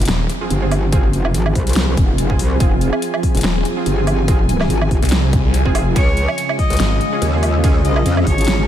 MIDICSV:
0, 0, Header, 1, 9, 480
1, 0, Start_track
1, 0, Key_signature, -4, "minor"
1, 0, Tempo, 419580
1, 1058, Time_signature, 4, 2, 24, 8
1, 9923, End_track
2, 0, Start_track
2, 0, Title_t, "Cello"
2, 0, Program_c, 0, 42
2, 6817, Note_on_c, 0, 73, 107
2, 7450, Note_off_c, 0, 73, 0
2, 7538, Note_on_c, 0, 75, 100
2, 8171, Note_off_c, 0, 75, 0
2, 8978, Note_on_c, 0, 75, 95
2, 9398, Note_off_c, 0, 75, 0
2, 9458, Note_on_c, 0, 73, 92
2, 9878, Note_off_c, 0, 73, 0
2, 9923, End_track
3, 0, Start_track
3, 0, Title_t, "Ambient pad"
3, 0, Program_c, 1, 92
3, 0, Note_on_c, 1, 65, 85
3, 225, Note_on_c, 1, 80, 79
3, 6818, Note_on_c, 1, 61, 97
3, 7089, Note_on_c, 1, 68, 85
3, 7292, Note_on_c, 1, 75, 72
3, 7836, Note_off_c, 1, 65, 0
3, 8078, Note_off_c, 1, 80, 0
3, 8102, Note_on_c, 1, 77, 90
3, 9923, Note_off_c, 1, 61, 0
3, 9923, Note_off_c, 1, 68, 0
3, 9923, Note_off_c, 1, 75, 0
3, 9923, Note_off_c, 1, 77, 0
3, 9923, End_track
4, 0, Start_track
4, 0, Title_t, "Synth stab"
4, 0, Program_c, 2, 62
4, 469, Note_on_c, 2, 60, 80
4, 469, Note_on_c, 2, 65, 76
4, 469, Note_on_c, 2, 68, 91
4, 669, Note_off_c, 2, 60, 0
4, 669, Note_off_c, 2, 65, 0
4, 669, Note_off_c, 2, 68, 0
4, 708, Note_on_c, 2, 65, 75
4, 709, Note_on_c, 2, 60, 77
4, 709, Note_on_c, 2, 68, 84
4, 835, Note_off_c, 2, 60, 0
4, 835, Note_off_c, 2, 65, 0
4, 835, Note_off_c, 2, 68, 0
4, 1058, Note_on_c, 2, 60, 85
4, 1058, Note_on_c, 2, 65, 79
4, 1058, Note_on_c, 2, 68, 97
4, 1203, Note_off_c, 2, 60, 0
4, 1203, Note_off_c, 2, 65, 0
4, 1203, Note_off_c, 2, 68, 0
4, 2629, Note_on_c, 2, 60, 80
4, 2629, Note_on_c, 2, 65, 73
4, 2629, Note_on_c, 2, 68, 88
4, 2755, Note_off_c, 2, 60, 0
4, 2755, Note_off_c, 2, 65, 0
4, 2755, Note_off_c, 2, 68, 0
4, 2978, Note_on_c, 2, 60, 86
4, 2978, Note_on_c, 2, 65, 76
4, 2978, Note_on_c, 2, 68, 99
4, 3123, Note_off_c, 2, 60, 0
4, 3123, Note_off_c, 2, 65, 0
4, 3123, Note_off_c, 2, 68, 0
4, 4308, Note_on_c, 2, 68, 91
4, 4309, Note_on_c, 2, 60, 83
4, 4309, Note_on_c, 2, 65, 76
4, 4509, Note_off_c, 2, 60, 0
4, 4509, Note_off_c, 2, 65, 0
4, 4509, Note_off_c, 2, 68, 0
4, 4548, Note_on_c, 2, 60, 75
4, 4548, Note_on_c, 2, 65, 73
4, 4548, Note_on_c, 2, 68, 85
4, 4675, Note_off_c, 2, 60, 0
4, 4675, Note_off_c, 2, 65, 0
4, 4675, Note_off_c, 2, 68, 0
4, 4897, Note_on_c, 2, 68, 93
4, 4898, Note_on_c, 2, 60, 88
4, 4898, Note_on_c, 2, 65, 78
4, 5043, Note_off_c, 2, 60, 0
4, 5043, Note_off_c, 2, 65, 0
4, 5043, Note_off_c, 2, 68, 0
4, 6469, Note_on_c, 2, 60, 98
4, 6469, Note_on_c, 2, 65, 90
4, 6469, Note_on_c, 2, 68, 107
4, 6561, Note_off_c, 2, 65, 0
4, 6562, Note_off_c, 2, 60, 0
4, 6562, Note_off_c, 2, 68, 0
4, 6578, Note_on_c, 2, 60, 94
4, 6578, Note_on_c, 2, 65, 82
4, 6578, Note_on_c, 2, 68, 98
4, 6723, Note_off_c, 2, 60, 0
4, 6723, Note_off_c, 2, 65, 0
4, 6723, Note_off_c, 2, 68, 0
4, 6818, Note_on_c, 2, 61, 87
4, 6818, Note_on_c, 2, 65, 79
4, 6818, Note_on_c, 2, 68, 96
4, 6963, Note_off_c, 2, 61, 0
4, 6963, Note_off_c, 2, 65, 0
4, 6963, Note_off_c, 2, 68, 0
4, 8149, Note_on_c, 2, 61, 85
4, 8149, Note_on_c, 2, 65, 77
4, 8149, Note_on_c, 2, 68, 93
4, 8349, Note_off_c, 2, 61, 0
4, 8349, Note_off_c, 2, 65, 0
4, 8349, Note_off_c, 2, 68, 0
4, 8389, Note_on_c, 2, 61, 81
4, 8389, Note_on_c, 2, 65, 69
4, 8389, Note_on_c, 2, 68, 88
4, 8515, Note_off_c, 2, 61, 0
4, 8515, Note_off_c, 2, 65, 0
4, 8515, Note_off_c, 2, 68, 0
4, 8738, Note_on_c, 2, 61, 86
4, 8738, Note_on_c, 2, 65, 83
4, 8738, Note_on_c, 2, 68, 97
4, 8883, Note_off_c, 2, 61, 0
4, 8883, Note_off_c, 2, 65, 0
4, 8883, Note_off_c, 2, 68, 0
4, 9923, End_track
5, 0, Start_track
5, 0, Title_t, "Supersaw synth"
5, 0, Program_c, 3, 81
5, 0, Note_on_c, 3, 53, 81
5, 0, Note_on_c, 3, 60, 75
5, 0, Note_on_c, 3, 68, 86
5, 6772, Note_off_c, 3, 53, 0
5, 6772, Note_off_c, 3, 60, 0
5, 6772, Note_off_c, 3, 68, 0
5, 6818, Note_on_c, 3, 49, 82
5, 6818, Note_on_c, 3, 56, 77
5, 6818, Note_on_c, 3, 65, 86
5, 9923, Note_off_c, 3, 49, 0
5, 9923, Note_off_c, 3, 56, 0
5, 9923, Note_off_c, 3, 65, 0
5, 9923, End_track
6, 0, Start_track
6, 0, Title_t, "Wobble bass"
6, 0, Program_c, 4, 39
6, 578, Note_on_c, 4, 31, 96
6, 1241, Note_off_c, 4, 31, 0
6, 1241, Note_on_c, 4, 30, 96
6, 1520, Note_off_c, 4, 30, 0
6, 1538, Note_on_c, 4, 32, 101
6, 1761, Note_off_c, 4, 32, 0
6, 1778, Note_on_c, 4, 36, 100
6, 2240, Note_off_c, 4, 36, 0
6, 2258, Note_on_c, 4, 29, 96
6, 2480, Note_off_c, 4, 29, 0
6, 2498, Note_on_c, 4, 29, 97
6, 2720, Note_off_c, 4, 29, 0
6, 2737, Note_on_c, 4, 36, 99
6, 2960, Note_off_c, 4, 36, 0
6, 2978, Note_on_c, 4, 29, 99
6, 3328, Note_off_c, 4, 29, 0
6, 3829, Note_on_c, 4, 29, 96
6, 3920, Note_off_c, 4, 29, 0
6, 4417, Note_on_c, 4, 31, 99
6, 5360, Note_off_c, 4, 31, 0
6, 5377, Note_on_c, 4, 32, 99
6, 5600, Note_off_c, 4, 32, 0
6, 5618, Note_on_c, 4, 31, 103
6, 5728, Note_off_c, 4, 31, 0
6, 6469, Note_on_c, 4, 29, 96
6, 6800, Note_off_c, 4, 29, 0
6, 6818, Note_on_c, 4, 37, 99
6, 7168, Note_off_c, 4, 37, 0
6, 7669, Note_on_c, 4, 37, 92
6, 7760, Note_off_c, 4, 37, 0
6, 8258, Note_on_c, 4, 39, 97
6, 9200, Note_off_c, 4, 39, 0
6, 9218, Note_on_c, 4, 41, 104
6, 9440, Note_off_c, 4, 41, 0
6, 9458, Note_on_c, 4, 32, 100
6, 9920, Note_off_c, 4, 32, 0
6, 9923, End_track
7, 0, Start_track
7, 0, Title_t, "Detuned saw bass"
7, 0, Program_c, 5, 39
7, 98, Note_on_c, 5, 27, 98
7, 320, Note_off_c, 5, 27, 0
7, 3938, Note_on_c, 5, 27, 96
7, 4161, Note_off_c, 5, 27, 0
7, 5749, Note_on_c, 5, 36, 100
7, 6448, Note_off_c, 5, 36, 0
7, 7778, Note_on_c, 5, 32, 99
7, 8000, Note_off_c, 5, 32, 0
7, 9923, End_track
8, 0, Start_track
8, 0, Title_t, "Impact"
8, 0, Program_c, 6, 103
8, 0, Note_on_c, 6, 60, 77
8, 1058, Note_off_c, 6, 60, 0
8, 9923, End_track
9, 0, Start_track
9, 0, Title_t, "Drums"
9, 18, Note_on_c, 9, 42, 67
9, 61, Note_off_c, 9, 42, 0
9, 61, Note_on_c, 9, 42, 83
9, 98, Note_off_c, 9, 42, 0
9, 98, Note_on_c, 9, 38, 127
9, 98, Note_on_c, 9, 42, 81
9, 212, Note_off_c, 9, 38, 0
9, 212, Note_off_c, 9, 42, 0
9, 338, Note_on_c, 9, 42, 54
9, 452, Note_off_c, 9, 42, 0
9, 577, Note_on_c, 9, 42, 83
9, 692, Note_off_c, 9, 42, 0
9, 818, Note_on_c, 9, 46, 94
9, 818, Note_on_c, 9, 77, 60
9, 932, Note_off_c, 9, 46, 0
9, 932, Note_off_c, 9, 77, 0
9, 1058, Note_on_c, 9, 36, 119
9, 1058, Note_on_c, 9, 42, 83
9, 1172, Note_off_c, 9, 36, 0
9, 1172, Note_off_c, 9, 42, 0
9, 1298, Note_on_c, 9, 42, 58
9, 1412, Note_off_c, 9, 42, 0
9, 1429, Note_on_c, 9, 77, 78
9, 1538, Note_on_c, 9, 42, 83
9, 1543, Note_off_c, 9, 77, 0
9, 1652, Note_off_c, 9, 42, 0
9, 1669, Note_on_c, 9, 77, 75
9, 1778, Note_on_c, 9, 36, 65
9, 1778, Note_on_c, 9, 46, 62
9, 1783, Note_off_c, 9, 77, 0
9, 1892, Note_off_c, 9, 36, 0
9, 1893, Note_off_c, 9, 46, 0
9, 1909, Note_on_c, 9, 42, 52
9, 1938, Note_off_c, 9, 42, 0
9, 1938, Note_on_c, 9, 42, 68
9, 1981, Note_off_c, 9, 42, 0
9, 1981, Note_on_c, 9, 42, 85
9, 2018, Note_off_c, 9, 42, 0
9, 2018, Note_on_c, 9, 38, 126
9, 2018, Note_on_c, 9, 42, 84
9, 2132, Note_off_c, 9, 38, 0
9, 2132, Note_off_c, 9, 42, 0
9, 2258, Note_on_c, 9, 36, 114
9, 2258, Note_on_c, 9, 42, 56
9, 2372, Note_off_c, 9, 36, 0
9, 2372, Note_off_c, 9, 42, 0
9, 2498, Note_on_c, 9, 42, 85
9, 2612, Note_off_c, 9, 42, 0
9, 2629, Note_on_c, 9, 36, 66
9, 2738, Note_on_c, 9, 46, 94
9, 2743, Note_off_c, 9, 36, 0
9, 2852, Note_off_c, 9, 46, 0
9, 2978, Note_on_c, 9, 36, 121
9, 2978, Note_on_c, 9, 42, 82
9, 3092, Note_off_c, 9, 36, 0
9, 3092, Note_off_c, 9, 42, 0
9, 3218, Note_on_c, 9, 42, 59
9, 3332, Note_off_c, 9, 42, 0
9, 3348, Note_on_c, 9, 77, 78
9, 3458, Note_on_c, 9, 42, 81
9, 3463, Note_off_c, 9, 77, 0
9, 3572, Note_off_c, 9, 42, 0
9, 3589, Note_on_c, 9, 77, 81
9, 3698, Note_on_c, 9, 36, 62
9, 3698, Note_on_c, 9, 46, 59
9, 3703, Note_off_c, 9, 77, 0
9, 3812, Note_off_c, 9, 36, 0
9, 3813, Note_off_c, 9, 46, 0
9, 3829, Note_on_c, 9, 42, 50
9, 3858, Note_off_c, 9, 42, 0
9, 3858, Note_on_c, 9, 42, 70
9, 3902, Note_off_c, 9, 42, 0
9, 3902, Note_on_c, 9, 42, 85
9, 3938, Note_off_c, 9, 42, 0
9, 3938, Note_on_c, 9, 38, 127
9, 3938, Note_on_c, 9, 42, 85
9, 4052, Note_off_c, 9, 38, 0
9, 4052, Note_off_c, 9, 42, 0
9, 4178, Note_on_c, 9, 42, 52
9, 4292, Note_off_c, 9, 42, 0
9, 4418, Note_on_c, 9, 42, 81
9, 4532, Note_off_c, 9, 42, 0
9, 4658, Note_on_c, 9, 46, 91
9, 4658, Note_on_c, 9, 77, 61
9, 4772, Note_off_c, 9, 46, 0
9, 4772, Note_off_c, 9, 77, 0
9, 4898, Note_on_c, 9, 36, 121
9, 4898, Note_on_c, 9, 42, 76
9, 5012, Note_off_c, 9, 36, 0
9, 5012, Note_off_c, 9, 42, 0
9, 5138, Note_on_c, 9, 42, 57
9, 5252, Note_off_c, 9, 42, 0
9, 5269, Note_on_c, 9, 38, 39
9, 5269, Note_on_c, 9, 77, 84
9, 5377, Note_on_c, 9, 42, 76
9, 5383, Note_off_c, 9, 38, 0
9, 5383, Note_off_c, 9, 77, 0
9, 5492, Note_off_c, 9, 42, 0
9, 5508, Note_on_c, 9, 77, 83
9, 5618, Note_on_c, 9, 36, 63
9, 5618, Note_on_c, 9, 46, 61
9, 5623, Note_off_c, 9, 77, 0
9, 5732, Note_off_c, 9, 36, 0
9, 5732, Note_off_c, 9, 46, 0
9, 5749, Note_on_c, 9, 42, 47
9, 5778, Note_off_c, 9, 42, 0
9, 5778, Note_on_c, 9, 42, 66
9, 5821, Note_off_c, 9, 42, 0
9, 5821, Note_on_c, 9, 42, 84
9, 5858, Note_off_c, 9, 42, 0
9, 5858, Note_on_c, 9, 38, 120
9, 5858, Note_on_c, 9, 42, 78
9, 5972, Note_off_c, 9, 38, 0
9, 5972, Note_off_c, 9, 42, 0
9, 6098, Note_on_c, 9, 36, 116
9, 6098, Note_on_c, 9, 42, 50
9, 6212, Note_off_c, 9, 36, 0
9, 6212, Note_off_c, 9, 42, 0
9, 6338, Note_on_c, 9, 42, 80
9, 6452, Note_off_c, 9, 42, 0
9, 6469, Note_on_c, 9, 36, 66
9, 6578, Note_on_c, 9, 46, 90
9, 6578, Note_on_c, 9, 77, 63
9, 6583, Note_off_c, 9, 36, 0
9, 6692, Note_off_c, 9, 46, 0
9, 6692, Note_off_c, 9, 77, 0
9, 6818, Note_on_c, 9, 36, 118
9, 6818, Note_on_c, 9, 42, 78
9, 6818, Note_on_c, 9, 51, 66
9, 6932, Note_off_c, 9, 36, 0
9, 6932, Note_off_c, 9, 42, 0
9, 6932, Note_off_c, 9, 51, 0
9, 7058, Note_on_c, 9, 42, 55
9, 7172, Note_off_c, 9, 42, 0
9, 7189, Note_on_c, 9, 77, 86
9, 7298, Note_on_c, 9, 42, 75
9, 7298, Note_on_c, 9, 51, 49
9, 7303, Note_off_c, 9, 77, 0
9, 7412, Note_off_c, 9, 42, 0
9, 7412, Note_off_c, 9, 51, 0
9, 7428, Note_on_c, 9, 77, 87
9, 7538, Note_on_c, 9, 36, 59
9, 7538, Note_on_c, 9, 46, 60
9, 7543, Note_off_c, 9, 77, 0
9, 7652, Note_off_c, 9, 36, 0
9, 7652, Note_off_c, 9, 46, 0
9, 7669, Note_on_c, 9, 42, 48
9, 7698, Note_off_c, 9, 42, 0
9, 7698, Note_on_c, 9, 42, 64
9, 7741, Note_off_c, 9, 42, 0
9, 7741, Note_on_c, 9, 42, 77
9, 7777, Note_off_c, 9, 42, 0
9, 7777, Note_on_c, 9, 38, 122
9, 7777, Note_on_c, 9, 42, 77
9, 7777, Note_on_c, 9, 51, 70
9, 7892, Note_off_c, 9, 38, 0
9, 7892, Note_off_c, 9, 42, 0
9, 7892, Note_off_c, 9, 51, 0
9, 8018, Note_on_c, 9, 42, 48
9, 8132, Note_off_c, 9, 42, 0
9, 8258, Note_on_c, 9, 42, 76
9, 8258, Note_on_c, 9, 51, 47
9, 8372, Note_off_c, 9, 42, 0
9, 8372, Note_off_c, 9, 51, 0
9, 8498, Note_on_c, 9, 46, 91
9, 8498, Note_on_c, 9, 77, 66
9, 8612, Note_off_c, 9, 46, 0
9, 8612, Note_off_c, 9, 77, 0
9, 8738, Note_on_c, 9, 36, 114
9, 8738, Note_on_c, 9, 42, 77
9, 8738, Note_on_c, 9, 51, 67
9, 8852, Note_off_c, 9, 36, 0
9, 8852, Note_off_c, 9, 42, 0
9, 8852, Note_off_c, 9, 51, 0
9, 8978, Note_on_c, 9, 42, 54
9, 9092, Note_off_c, 9, 42, 0
9, 9108, Note_on_c, 9, 77, 88
9, 9218, Note_on_c, 9, 42, 74
9, 9218, Note_on_c, 9, 51, 50
9, 9223, Note_off_c, 9, 77, 0
9, 9332, Note_off_c, 9, 42, 0
9, 9332, Note_off_c, 9, 51, 0
9, 9349, Note_on_c, 9, 77, 84
9, 9458, Note_on_c, 9, 36, 56
9, 9458, Note_on_c, 9, 46, 62
9, 9463, Note_off_c, 9, 77, 0
9, 9572, Note_off_c, 9, 36, 0
9, 9572, Note_off_c, 9, 46, 0
9, 9589, Note_on_c, 9, 42, 48
9, 9618, Note_off_c, 9, 42, 0
9, 9618, Note_on_c, 9, 42, 64
9, 9662, Note_off_c, 9, 42, 0
9, 9662, Note_on_c, 9, 42, 76
9, 9698, Note_off_c, 9, 42, 0
9, 9698, Note_on_c, 9, 38, 119
9, 9698, Note_on_c, 9, 42, 81
9, 9698, Note_on_c, 9, 51, 70
9, 9813, Note_off_c, 9, 38, 0
9, 9813, Note_off_c, 9, 42, 0
9, 9813, Note_off_c, 9, 51, 0
9, 9923, End_track
0, 0, End_of_file